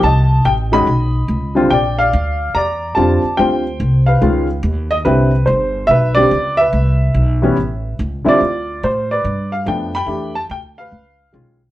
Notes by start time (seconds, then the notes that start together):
0.03 C2 D#5 A5
0.45 A1 G5
0.72 D#3 G#3 C#4 F#4 D#5 B5
0.87 B1
1.28 C#2
1.55 D3 G3 C4 F4
1.70 A#1 D5 G5
1.99 D5 F5
2.13 D2
2.55 E2 D5 A#5
2.95 F2 D3 G3 C4 F4 A5
3.24 muted upright bass stroke
3.37 D2 D3 G3 C4 F4 C5 G5
3.80 C2
4.06 B4 F5
4.21 C#2 D#3 G#3 C#4 F4
4.63 D#2
4.91 D#5
5.05 C2 D3 G3 C4 E4 B4
5.46 G1 C5
5.87 B1 B4 E5
6.15 D3 G3 C4 G4 D5
6.31 C#2
6.57 B4 E5
6.73 C2
7.14 B1
7.42 E3 G3 B3 C#4
7.57 A1
7.99 C#2
8.25 D3 G3 C4 E4 F4 D5, muted upright bass stroke
8.41 D2
8.83 A2 C5
9.11 B4 D5
9.24 G2
9.52 F5
9.66 F2 F3 A3 B3 D4 G5
9.95 G5 B5
10.06 E2 E3 A3 D4 G4
10.35 A5
10.50 D2 G5
10.78 B4 F5
10.92 C#2
11.33 B1 D#3 G#3 C#4 F4